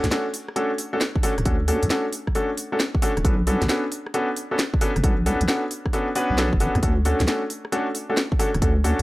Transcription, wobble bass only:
0.04 0.09 D2 medium
1.38 1.44 D1 medium
1.46 1.77 D2 medium
1.83 1.88 D2 medium
3.17 3.23 D1 medium
3.25 3.56 B1 loud
3.62 3.67 B1 medium
4.96 5.02 F#1 medium
5.04 5.35 B1 loud
5.41 5.47 B1 medium
6.30 6.54 B1 medium
6.53 6.68 F#1 loud
6.75 6.81 E2 medium
6.83 7.14 D2 loud
7.20 7.26 D2 medium
8.54 8.60 D1 medium
8.62 8.93 D2 medium

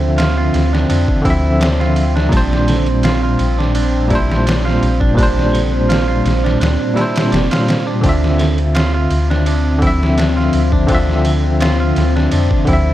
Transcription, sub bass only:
0.00 0.50 D2 medium
0.54 0.86 D2 medium
0.90 1.06 F2 medium
1.25 2.29 D2 loud
2.32 3.36 A#1 loud
3.39 4.79 A#1 medium
4.82 6.22 A#1 medium
6.25 6.57 A#1 medium
6.61 6.78 D2 medium
7.32 7.49 F1 loud
8.04 9.08 D2 loud
9.11 10.50 D2 medium
10.54 11.93 D2 medium
11.97 12.28 D2 loud
12.32 12.49 F2 medium
12.68 12.94 D2 loud

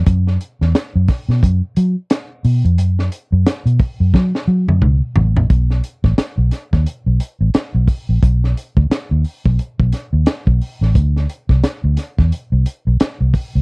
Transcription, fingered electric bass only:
0.07 0.36 F#2 loud
0.61 0.73 E2 medium
0.95 1.07 F#2 medium
1.29 1.40 B2 medium
1.43 1.60 F#2 medium
1.77 1.94 F#3 medium
2.45 2.62 B2 loud
2.65 2.78 F2 medium
2.78 3.08 F#2 loud
3.32 3.44 F#2 medium
3.66 3.78 B2 medium
4.00 4.12 F#2 medium
4.14 4.32 F#3 loud
4.48 4.66 F#3 loud
4.68 4.80 F#2 medium
4.81 5.00 C#2 medium
5.16 5.36 A1 loud
5.36 5.48 A#1 medium
5.50 5.80 B1 medium
6.04 6.16 A1 medium
6.18 muted fingered electric bass stroke soft
6.38 6.50 B1 medium
6.73 6.85 D#2 medium
7.06 7.19 B1 medium
7.41 7.53 A1 medium
7.75 7.87 B1 medium
8.09 8.21 A#1 medium
8.23 8.53 B1 loud
8.77 8.89 D2 medium
8.90 muted fingered electric bass stroke soft
9.11 9.23 D#2 medium
9.46 9.58 B1 medium
9.80 9.92 B1 medium
10.13 10.25 D#2 medium
10.47 10.59 B1 medium
10.81 10.94 A1 medium
10.95 11.26 D2 loud
11.49 11.62 C2 medium
11.84 11.96 D2 medium
12.19 12.31 E2 medium
12.52 12.64 C2 loud
12.87 12.99 B1 medium
13.01 muted fingered electric bass stroke medium
13.21 13.33 C2 medium
13.55 13.62 C#2 medium

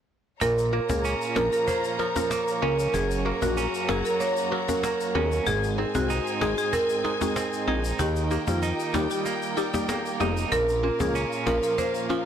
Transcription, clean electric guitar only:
0.41 2.94 A#2 medium
0.73 1.67 A#3 medium
1.05 2.62 C#4 medium
1.36 1.98 F3 medium
1.68 2.31 A#3 medium
1.99 3.01 F3 medium
2.31 3.25 A#3 medium
2.62 3.57 C#4 medium
2.94 5.46 F#2 medium
3.26 4.19 A#3 medium
3.57 5.14 C#4 medium
3.89 4.51 F#3 medium
4.20 4.82 A#3 medium
4.52 5.53 F#3 medium
4.84 5.53 A#3 medium
5.15 5.53 C#4 medium
5.47 7.99 G#2 medium
5.78 6.72 C4 medium
6.10 7.67 D#4 medium
6.41 7.03 G#3 medium
6.73 7.35 C4 medium
7.05 8.06 G#3 medium
7.36 8.06 C4 medium
7.68 8.62 D#4 medium
7.99 10.52 D#3 medium
8.31 9.25 A#3 medium
8.63 10.19 D#4 medium
8.94 9.56 G3 medium
9.26 9.89 A#3 medium
9.57 10.59 G3 medium
9.89 10.83 A#3 medium
10.21 10.59 D#4 medium
10.52 12.25 A#2 medium
10.84 11.78 A#3 medium
11.15 12.25 C#4 medium
11.47 12.09 F3 medium
11.78 12.25 A#3 medium
12.10 12.25 F3 medium

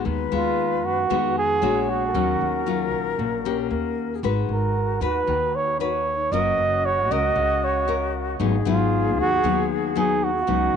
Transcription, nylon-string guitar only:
0.00 0.31 G#3 medium
0.00 0.31 B3 medium
0.00 0.54 F#4 medium
0.05 1.07 D#3 medium
0.32 1.06 G#3 medium
0.32 1.06 B3 medium
1.10 1.60 D#3 medium
1.10 1.58 G#3 medium
1.10 1.58 B3 medium
1.10 1.58 F#4 medium
1.62 2.10 G#3 medium
1.62 2.10 D4 medium
1.62 2.11 F#4 medium
2.14 3.16 D#3 soft
2.14 2.62 F#3 soft
2.14 2.63 C#4 medium
2.66 3.40 F#3 medium
2.66 3.41 C#4 medium
2.66 3.41 F4 medium
3.19 3.68 A#2 medium
3.45 4.21 A#3 medium
3.45 4.21 C#4 medium
3.45 4.22 G4 medium
4.23 5.25 G#3 soft
4.23 4.75 D#4 soft
4.23 4.75 F#4 medium
4.23 4.76 B4 medium
5.01 5.75 D#4 medium
5.01 5.75 F#4 medium
5.01 5.76 B4 medium
5.27 6.29 D#3 medium
5.80 6.13 D#4 medium
5.80 6.13 F#4 medium
5.80 6.14 B4 medium
6.32 7.34 F#3 medium
6.32 6.84 C#4 soft
6.32 6.84 A#4 medium
7.11 7.84 C#4 medium
7.11 7.85 A#4 medium
7.36 8.37 C#3 medium
7.88 8.36 C#4 medium
7.88 8.36 A#4 medium
8.40 9.41 G#2 medium
8.40 8.55 F#3 medium
8.40 8.55 B3 medium
8.40 8.55 D#4 medium
8.65 9.39 F#3 medium
8.65 9.40 B3 medium
8.65 9.40 D#4 medium
9.43 10.45 D#3 medium
9.43 9.92 F#3 medium
9.43 9.92 B3 soft
9.43 9.92 D#4 medium
9.95 10.29 F#3 medium
9.95 10.29 B3 medium
9.95 10.30 D#4 medium
10.47 10.76 C#3 medium
10.47 10.76 F#3 medium
10.47 10.76 B3 medium
10.47 10.76 D#4 medium

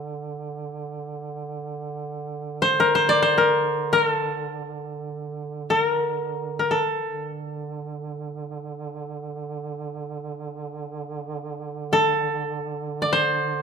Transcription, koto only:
0.00 0.42 D5 medium
2.62 2.95 C5 medium
2.80 3.37 A#4 medium
2.95 3.22 C5 medium
3.09 4.69 D5 medium
3.22 4.94 C5 medium
3.38 3.93 A#4 medium
3.93 4.06 A#4 medium
4.06 5.70 A4 medium
5.70 5.82 A4 medium
5.82 6.59 A#4 medium
6.59 6.77 A#4 soft
6.71 9.66 A4 soft
11.93 13.62 A4 medium
13.02 13.62 D5 medium
13.13 13.62 C5 medium

